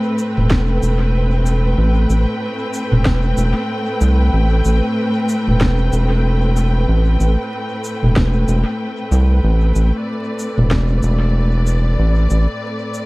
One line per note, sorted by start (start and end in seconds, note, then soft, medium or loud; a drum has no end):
0.00 13.06 A2 medium
0.00 13.06 A3 medium
0.00 13.06 C4 medium
0.00 13.06 B4 medium
0.00 10.04 G5 medium
0.18 shaker medium
0.37 0.80 E1 loud
0.37 mid tom medium
0.50 kick loud
0.50 snare medium
0.82 1.75 E1 loud
0.82 shaker medium
1.46 shaker medium
1.78 2.06 A1 loud
2.09 2.26 A1 medium
2.09 shaker medium
2.74 shaker medium
2.92 3.05 E1 loud
2.92 mid tom medium
3.05 3.34 E1 medium
3.05 kick loud
3.05 snare medium
3.37 3.54 E1 loud
3.37 shaker medium
4.01 4.30 C2 medium
4.01 shaker medium
4.33 4.62 A1 loud
4.65 4.81 A1 medium
4.65 shaker medium
5.29 shaker medium
5.48 5.90 E1 loud
5.48 mid tom medium
5.61 kick loud
5.61 snare medium
5.92 6.86 E1 loud
5.92 shaker medium
6.57 shaker medium
6.88 7.17 A1 loud
7.20 7.37 A1 loud
7.20 shaker medium
7.84 shaker medium
8.03 8.16 E1 loud
8.03 mid tom medium
8.16 8.45 E1 medium
8.16 kick loud
8.16 snare medium
8.48 8.64 E1 medium
8.48 shaker medium
9.12 9.40 C2 loud
9.12 shaker medium
9.44 9.72 A1 loud
9.75 9.92 A1 medium
9.75 shaker medium
10.00 13.06 D5 medium
10.39 shaker soft
10.58 11.00 E1 loud
10.58 mid tom medium
10.71 kick loud
10.71 snare medium
11.03 11.96 E1 loud
11.03 shaker soft
11.67 shaker medium
11.99 12.28 A1 loud
12.30 12.47 A1 loud
12.30 shaker medium
12.94 shaker medium